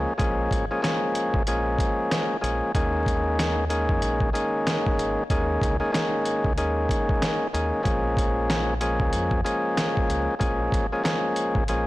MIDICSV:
0, 0, Header, 1, 4, 480
1, 0, Start_track
1, 0, Key_signature, -5, "minor"
1, 0, Tempo, 638298
1, 145, Time_signature, 4, 2, 24, 8
1, 8925, End_track
2, 0, Start_track
2, 0, Title_t, "Tonewheel organ"
2, 0, Program_c, 0, 16
2, 0, Note_on_c, 0, 53, 102
2, 0, Note_on_c, 0, 56, 78
2, 0, Note_on_c, 0, 58, 85
2, 0, Note_on_c, 0, 61, 83
2, 0, Note_on_c, 0, 68, 108
2, 99, Note_off_c, 0, 53, 0
2, 100, Note_off_c, 0, 56, 0
2, 101, Note_off_c, 0, 58, 0
2, 102, Note_off_c, 0, 61, 0
2, 102, Note_off_c, 0, 68, 0
2, 133, Note_on_c, 0, 53, 96
2, 135, Note_on_c, 0, 56, 83
2, 136, Note_on_c, 0, 58, 88
2, 138, Note_on_c, 0, 61, 92
2, 139, Note_on_c, 0, 68, 110
2, 490, Note_off_c, 0, 53, 0
2, 491, Note_off_c, 0, 56, 0
2, 492, Note_off_c, 0, 58, 0
2, 493, Note_off_c, 0, 61, 0
2, 493, Note_off_c, 0, 68, 0
2, 534, Note_on_c, 0, 53, 102
2, 535, Note_on_c, 0, 56, 95
2, 536, Note_on_c, 0, 58, 94
2, 538, Note_on_c, 0, 61, 91
2, 540, Note_on_c, 0, 68, 106
2, 610, Note_off_c, 0, 53, 0
2, 611, Note_off_c, 0, 56, 0
2, 613, Note_off_c, 0, 58, 0
2, 614, Note_off_c, 0, 61, 0
2, 615, Note_off_c, 0, 68, 0
2, 619, Note_on_c, 0, 53, 97
2, 620, Note_on_c, 0, 56, 93
2, 622, Note_on_c, 0, 58, 98
2, 623, Note_on_c, 0, 61, 88
2, 624, Note_on_c, 0, 68, 114
2, 1072, Note_off_c, 0, 53, 0
2, 1073, Note_off_c, 0, 56, 0
2, 1074, Note_off_c, 0, 58, 0
2, 1074, Note_off_c, 0, 61, 0
2, 1075, Note_off_c, 0, 68, 0
2, 1110, Note_on_c, 0, 53, 87
2, 1111, Note_on_c, 0, 56, 87
2, 1112, Note_on_c, 0, 58, 80
2, 1114, Note_on_c, 0, 61, 79
2, 1116, Note_on_c, 0, 68, 104
2, 1782, Note_off_c, 0, 53, 0
2, 1783, Note_off_c, 0, 56, 0
2, 1784, Note_off_c, 0, 58, 0
2, 1784, Note_off_c, 0, 61, 0
2, 1785, Note_off_c, 0, 68, 0
2, 1815, Note_on_c, 0, 53, 74
2, 1817, Note_on_c, 0, 56, 76
2, 1818, Note_on_c, 0, 58, 80
2, 1820, Note_on_c, 0, 61, 73
2, 1821, Note_on_c, 0, 68, 84
2, 2045, Note_off_c, 0, 53, 0
2, 2046, Note_off_c, 0, 56, 0
2, 2046, Note_off_c, 0, 58, 0
2, 2047, Note_off_c, 0, 61, 0
2, 2048, Note_off_c, 0, 68, 0
2, 2066, Note_on_c, 0, 51, 97
2, 2067, Note_on_c, 0, 56, 88
2, 2068, Note_on_c, 0, 58, 96
2, 2070, Note_on_c, 0, 61, 91
2, 2071, Note_on_c, 0, 68, 109
2, 2740, Note_off_c, 0, 51, 0
2, 2741, Note_off_c, 0, 56, 0
2, 2742, Note_off_c, 0, 58, 0
2, 2742, Note_off_c, 0, 61, 0
2, 2743, Note_off_c, 0, 68, 0
2, 2778, Note_on_c, 0, 51, 93
2, 2780, Note_on_c, 0, 56, 84
2, 2781, Note_on_c, 0, 58, 85
2, 2783, Note_on_c, 0, 61, 90
2, 2784, Note_on_c, 0, 68, 107
2, 3231, Note_off_c, 0, 51, 0
2, 3232, Note_off_c, 0, 56, 0
2, 3233, Note_off_c, 0, 58, 0
2, 3234, Note_off_c, 0, 61, 0
2, 3234, Note_off_c, 0, 68, 0
2, 3258, Note_on_c, 0, 51, 93
2, 3259, Note_on_c, 0, 56, 90
2, 3261, Note_on_c, 0, 58, 92
2, 3262, Note_on_c, 0, 61, 85
2, 3263, Note_on_c, 0, 68, 109
2, 3936, Note_off_c, 0, 51, 0
2, 3937, Note_off_c, 0, 56, 0
2, 3938, Note_off_c, 0, 58, 0
2, 3938, Note_off_c, 0, 61, 0
2, 3939, Note_off_c, 0, 68, 0
2, 3988, Note_on_c, 0, 51, 96
2, 3989, Note_on_c, 0, 56, 87
2, 3991, Note_on_c, 0, 58, 87
2, 3992, Note_on_c, 0, 61, 88
2, 3993, Note_on_c, 0, 68, 109
2, 4338, Note_off_c, 0, 51, 0
2, 4338, Note_off_c, 0, 56, 0
2, 4339, Note_off_c, 0, 58, 0
2, 4340, Note_off_c, 0, 61, 0
2, 4340, Note_off_c, 0, 68, 0
2, 4362, Note_on_c, 0, 51, 98
2, 4363, Note_on_c, 0, 56, 96
2, 4364, Note_on_c, 0, 58, 85
2, 4366, Note_on_c, 0, 61, 84
2, 4368, Note_on_c, 0, 68, 107
2, 4444, Note_off_c, 0, 51, 0
2, 4446, Note_off_c, 0, 56, 0
2, 4447, Note_off_c, 0, 58, 0
2, 4449, Note_off_c, 0, 61, 0
2, 4450, Note_off_c, 0, 68, 0
2, 4453, Note_on_c, 0, 51, 97
2, 4455, Note_on_c, 0, 56, 86
2, 4456, Note_on_c, 0, 58, 87
2, 4458, Note_on_c, 0, 61, 85
2, 4459, Note_on_c, 0, 68, 115
2, 4909, Note_off_c, 0, 51, 0
2, 4910, Note_off_c, 0, 56, 0
2, 4911, Note_off_c, 0, 58, 0
2, 4911, Note_off_c, 0, 61, 0
2, 4912, Note_off_c, 0, 68, 0
2, 4945, Note_on_c, 0, 51, 100
2, 4946, Note_on_c, 0, 56, 86
2, 4947, Note_on_c, 0, 58, 75
2, 4949, Note_on_c, 0, 61, 81
2, 4950, Note_on_c, 0, 68, 102
2, 5620, Note_off_c, 0, 51, 0
2, 5620, Note_off_c, 0, 56, 0
2, 5621, Note_off_c, 0, 58, 0
2, 5622, Note_off_c, 0, 61, 0
2, 5623, Note_off_c, 0, 68, 0
2, 5665, Note_on_c, 0, 51, 75
2, 5667, Note_on_c, 0, 56, 69
2, 5669, Note_on_c, 0, 58, 70
2, 5670, Note_on_c, 0, 61, 67
2, 5672, Note_on_c, 0, 68, 87
2, 5882, Note_off_c, 0, 56, 0
2, 5883, Note_off_c, 0, 58, 0
2, 5885, Note_off_c, 0, 61, 0
2, 5886, Note_off_c, 0, 68, 0
2, 5890, Note_off_c, 0, 51, 0
2, 5890, Note_on_c, 0, 53, 90
2, 5891, Note_on_c, 0, 56, 91
2, 5892, Note_on_c, 0, 58, 89
2, 5894, Note_on_c, 0, 61, 81
2, 5895, Note_on_c, 0, 68, 110
2, 6572, Note_off_c, 0, 53, 0
2, 6573, Note_off_c, 0, 56, 0
2, 6574, Note_off_c, 0, 58, 0
2, 6575, Note_off_c, 0, 61, 0
2, 6575, Note_off_c, 0, 68, 0
2, 6622, Note_on_c, 0, 53, 101
2, 6624, Note_on_c, 0, 56, 88
2, 6625, Note_on_c, 0, 58, 93
2, 6626, Note_on_c, 0, 61, 89
2, 6628, Note_on_c, 0, 68, 105
2, 7073, Note_off_c, 0, 53, 0
2, 7074, Note_off_c, 0, 56, 0
2, 7075, Note_off_c, 0, 58, 0
2, 7076, Note_off_c, 0, 61, 0
2, 7076, Note_off_c, 0, 68, 0
2, 7103, Note_on_c, 0, 53, 102
2, 7104, Note_on_c, 0, 56, 81
2, 7105, Note_on_c, 0, 58, 82
2, 7107, Note_on_c, 0, 61, 84
2, 7108, Note_on_c, 0, 68, 109
2, 7779, Note_off_c, 0, 53, 0
2, 7779, Note_off_c, 0, 56, 0
2, 7780, Note_off_c, 0, 58, 0
2, 7781, Note_off_c, 0, 61, 0
2, 7782, Note_off_c, 0, 68, 0
2, 7813, Note_on_c, 0, 53, 93
2, 7815, Note_on_c, 0, 56, 84
2, 7815, Note_on_c, 0, 58, 89
2, 7817, Note_on_c, 0, 61, 91
2, 7818, Note_on_c, 0, 68, 107
2, 8170, Note_off_c, 0, 53, 0
2, 8171, Note_off_c, 0, 56, 0
2, 8171, Note_off_c, 0, 58, 0
2, 8172, Note_off_c, 0, 61, 0
2, 8173, Note_off_c, 0, 68, 0
2, 8214, Note_on_c, 0, 53, 99
2, 8215, Note_on_c, 0, 56, 91
2, 8217, Note_on_c, 0, 58, 90
2, 8218, Note_on_c, 0, 61, 87
2, 8220, Note_on_c, 0, 68, 104
2, 8290, Note_off_c, 0, 53, 0
2, 8292, Note_off_c, 0, 56, 0
2, 8293, Note_off_c, 0, 58, 0
2, 8295, Note_off_c, 0, 61, 0
2, 8296, Note_off_c, 0, 68, 0
2, 8299, Note_on_c, 0, 53, 96
2, 8301, Note_on_c, 0, 56, 95
2, 8302, Note_on_c, 0, 58, 98
2, 8304, Note_on_c, 0, 61, 87
2, 8305, Note_on_c, 0, 68, 112
2, 8752, Note_off_c, 0, 53, 0
2, 8753, Note_off_c, 0, 56, 0
2, 8754, Note_off_c, 0, 58, 0
2, 8754, Note_off_c, 0, 61, 0
2, 8755, Note_off_c, 0, 68, 0
2, 8790, Note_on_c, 0, 53, 86
2, 8792, Note_on_c, 0, 56, 84
2, 8793, Note_on_c, 0, 58, 83
2, 8794, Note_on_c, 0, 61, 79
2, 8795, Note_on_c, 0, 68, 101
2, 8925, Note_off_c, 0, 53, 0
2, 8925, Note_off_c, 0, 56, 0
2, 8925, Note_off_c, 0, 58, 0
2, 8925, Note_off_c, 0, 61, 0
2, 8925, Note_off_c, 0, 68, 0
2, 8925, End_track
3, 0, Start_track
3, 0, Title_t, "Fingered electric bass"
3, 0, Program_c, 1, 33
3, 149, Note_on_c, 1, 34, 108
3, 357, Note_off_c, 1, 34, 0
3, 387, Note_on_c, 1, 32, 90
3, 514, Note_off_c, 1, 32, 0
3, 1009, Note_on_c, 1, 32, 85
3, 1110, Note_off_c, 1, 32, 0
3, 1110, Note_on_c, 1, 34, 104
3, 1318, Note_off_c, 1, 34, 0
3, 1830, Note_on_c, 1, 34, 96
3, 1956, Note_off_c, 1, 34, 0
3, 2069, Note_on_c, 1, 39, 111
3, 2903, Note_off_c, 1, 39, 0
3, 2928, Note_on_c, 1, 41, 86
3, 3012, Note_off_c, 1, 41, 0
3, 3030, Note_on_c, 1, 34, 109
3, 3238, Note_off_c, 1, 34, 0
3, 3750, Note_on_c, 1, 32, 92
3, 3876, Note_off_c, 1, 32, 0
3, 3988, Note_on_c, 1, 39, 111
3, 4197, Note_off_c, 1, 39, 0
3, 4226, Note_on_c, 1, 37, 94
3, 4354, Note_off_c, 1, 37, 0
3, 4849, Note_on_c, 1, 37, 90
3, 4950, Note_off_c, 1, 37, 0
3, 4950, Note_on_c, 1, 39, 103
3, 5158, Note_off_c, 1, 39, 0
3, 5671, Note_on_c, 1, 39, 101
3, 5796, Note_off_c, 1, 39, 0
3, 5909, Note_on_c, 1, 34, 109
3, 6743, Note_off_c, 1, 34, 0
3, 6769, Note_on_c, 1, 37, 90
3, 6852, Note_off_c, 1, 37, 0
3, 6871, Note_on_c, 1, 41, 99
3, 7078, Note_off_c, 1, 41, 0
3, 7591, Note_on_c, 1, 37, 95
3, 7716, Note_off_c, 1, 37, 0
3, 7828, Note_on_c, 1, 34, 111
3, 8037, Note_off_c, 1, 34, 0
3, 8066, Note_on_c, 1, 32, 91
3, 8194, Note_off_c, 1, 32, 0
3, 8689, Note_on_c, 1, 32, 85
3, 8791, Note_off_c, 1, 32, 0
3, 8791, Note_on_c, 1, 34, 108
3, 8925, Note_off_c, 1, 34, 0
3, 8925, End_track
4, 0, Start_track
4, 0, Title_t, "Drums"
4, 146, Note_on_c, 9, 36, 117
4, 147, Note_on_c, 9, 42, 75
4, 221, Note_off_c, 9, 36, 0
4, 222, Note_off_c, 9, 42, 0
4, 383, Note_on_c, 9, 36, 103
4, 395, Note_on_c, 9, 42, 75
4, 459, Note_off_c, 9, 36, 0
4, 470, Note_off_c, 9, 42, 0
4, 631, Note_on_c, 9, 40, 84
4, 633, Note_on_c, 9, 38, 103
4, 637, Note_on_c, 9, 42, 95
4, 706, Note_off_c, 9, 40, 0
4, 708, Note_off_c, 9, 38, 0
4, 712, Note_off_c, 9, 42, 0
4, 865, Note_on_c, 9, 42, 74
4, 940, Note_off_c, 9, 42, 0
4, 1006, Note_on_c, 9, 36, 98
4, 1082, Note_off_c, 9, 36, 0
4, 1104, Note_on_c, 9, 42, 87
4, 1179, Note_off_c, 9, 42, 0
4, 1342, Note_on_c, 9, 36, 101
4, 1354, Note_on_c, 9, 42, 79
4, 1418, Note_off_c, 9, 36, 0
4, 1429, Note_off_c, 9, 42, 0
4, 1590, Note_on_c, 9, 40, 92
4, 1592, Note_on_c, 9, 38, 113
4, 1594, Note_on_c, 9, 42, 86
4, 1665, Note_off_c, 9, 40, 0
4, 1667, Note_off_c, 9, 38, 0
4, 1669, Note_off_c, 9, 42, 0
4, 1834, Note_on_c, 9, 42, 73
4, 1909, Note_off_c, 9, 42, 0
4, 2065, Note_on_c, 9, 36, 116
4, 2067, Note_on_c, 9, 42, 77
4, 2141, Note_off_c, 9, 36, 0
4, 2142, Note_off_c, 9, 42, 0
4, 2303, Note_on_c, 9, 36, 102
4, 2315, Note_on_c, 9, 42, 75
4, 2378, Note_off_c, 9, 36, 0
4, 2390, Note_off_c, 9, 42, 0
4, 2550, Note_on_c, 9, 40, 87
4, 2552, Note_on_c, 9, 38, 108
4, 2556, Note_on_c, 9, 42, 98
4, 2625, Note_off_c, 9, 40, 0
4, 2627, Note_off_c, 9, 38, 0
4, 2631, Note_off_c, 9, 42, 0
4, 2784, Note_on_c, 9, 42, 73
4, 2859, Note_off_c, 9, 42, 0
4, 2926, Note_on_c, 9, 36, 94
4, 3001, Note_off_c, 9, 36, 0
4, 3024, Note_on_c, 9, 42, 86
4, 3099, Note_off_c, 9, 42, 0
4, 3162, Note_on_c, 9, 36, 100
4, 3237, Note_off_c, 9, 36, 0
4, 3273, Note_on_c, 9, 42, 79
4, 3349, Note_off_c, 9, 42, 0
4, 3510, Note_on_c, 9, 40, 92
4, 3512, Note_on_c, 9, 38, 116
4, 3514, Note_on_c, 9, 42, 87
4, 3585, Note_off_c, 9, 40, 0
4, 3587, Note_off_c, 9, 38, 0
4, 3589, Note_off_c, 9, 42, 0
4, 3658, Note_on_c, 9, 36, 94
4, 3733, Note_off_c, 9, 36, 0
4, 3754, Note_on_c, 9, 42, 73
4, 3829, Note_off_c, 9, 42, 0
4, 3985, Note_on_c, 9, 36, 115
4, 3987, Note_on_c, 9, 42, 77
4, 4061, Note_off_c, 9, 36, 0
4, 4062, Note_off_c, 9, 42, 0
4, 4223, Note_on_c, 9, 36, 106
4, 4235, Note_on_c, 9, 42, 73
4, 4298, Note_off_c, 9, 36, 0
4, 4310, Note_off_c, 9, 42, 0
4, 4470, Note_on_c, 9, 40, 85
4, 4472, Note_on_c, 9, 38, 105
4, 4476, Note_on_c, 9, 42, 95
4, 4545, Note_off_c, 9, 40, 0
4, 4547, Note_off_c, 9, 38, 0
4, 4551, Note_off_c, 9, 42, 0
4, 4704, Note_on_c, 9, 42, 70
4, 4779, Note_off_c, 9, 42, 0
4, 4846, Note_on_c, 9, 36, 97
4, 4921, Note_off_c, 9, 36, 0
4, 4944, Note_on_c, 9, 42, 87
4, 5020, Note_off_c, 9, 42, 0
4, 5183, Note_on_c, 9, 36, 94
4, 5194, Note_on_c, 9, 42, 80
4, 5258, Note_off_c, 9, 36, 0
4, 5269, Note_off_c, 9, 42, 0
4, 5333, Note_on_c, 9, 36, 104
4, 5408, Note_off_c, 9, 36, 0
4, 5430, Note_on_c, 9, 40, 90
4, 5432, Note_on_c, 9, 38, 115
4, 5434, Note_on_c, 9, 42, 87
4, 5505, Note_off_c, 9, 40, 0
4, 5508, Note_off_c, 9, 38, 0
4, 5509, Note_off_c, 9, 42, 0
4, 5674, Note_on_c, 9, 42, 72
4, 5749, Note_off_c, 9, 42, 0
4, 5906, Note_on_c, 9, 36, 114
4, 5907, Note_on_c, 9, 42, 77
4, 5981, Note_off_c, 9, 36, 0
4, 5982, Note_off_c, 9, 42, 0
4, 6143, Note_on_c, 9, 36, 102
4, 6155, Note_on_c, 9, 42, 75
4, 6218, Note_off_c, 9, 36, 0
4, 6230, Note_off_c, 9, 42, 0
4, 6390, Note_on_c, 9, 40, 85
4, 6392, Note_on_c, 9, 38, 105
4, 6396, Note_on_c, 9, 42, 93
4, 6465, Note_off_c, 9, 40, 0
4, 6467, Note_off_c, 9, 38, 0
4, 6471, Note_off_c, 9, 42, 0
4, 6624, Note_on_c, 9, 42, 74
4, 6699, Note_off_c, 9, 42, 0
4, 6766, Note_on_c, 9, 36, 99
4, 6841, Note_off_c, 9, 36, 0
4, 6864, Note_on_c, 9, 42, 85
4, 6939, Note_off_c, 9, 42, 0
4, 7002, Note_on_c, 9, 36, 102
4, 7077, Note_off_c, 9, 36, 0
4, 7114, Note_on_c, 9, 42, 77
4, 7189, Note_off_c, 9, 42, 0
4, 7350, Note_on_c, 9, 40, 90
4, 7352, Note_on_c, 9, 38, 115
4, 7354, Note_on_c, 9, 42, 92
4, 7425, Note_off_c, 9, 40, 0
4, 7427, Note_off_c, 9, 38, 0
4, 7429, Note_off_c, 9, 42, 0
4, 7498, Note_on_c, 9, 36, 99
4, 7573, Note_off_c, 9, 36, 0
4, 7594, Note_on_c, 9, 42, 70
4, 7669, Note_off_c, 9, 42, 0
4, 7825, Note_on_c, 9, 36, 118
4, 7827, Note_on_c, 9, 42, 77
4, 7901, Note_off_c, 9, 36, 0
4, 7902, Note_off_c, 9, 42, 0
4, 8063, Note_on_c, 9, 36, 106
4, 8075, Note_on_c, 9, 42, 75
4, 8138, Note_off_c, 9, 36, 0
4, 8150, Note_off_c, 9, 42, 0
4, 8310, Note_on_c, 9, 40, 87
4, 8312, Note_on_c, 9, 38, 107
4, 8316, Note_on_c, 9, 42, 92
4, 8385, Note_off_c, 9, 40, 0
4, 8387, Note_off_c, 9, 38, 0
4, 8391, Note_off_c, 9, 42, 0
4, 8544, Note_on_c, 9, 42, 70
4, 8619, Note_off_c, 9, 42, 0
4, 8686, Note_on_c, 9, 36, 99
4, 8761, Note_off_c, 9, 36, 0
4, 8784, Note_on_c, 9, 42, 87
4, 8859, Note_off_c, 9, 42, 0
4, 8925, End_track
0, 0, End_of_file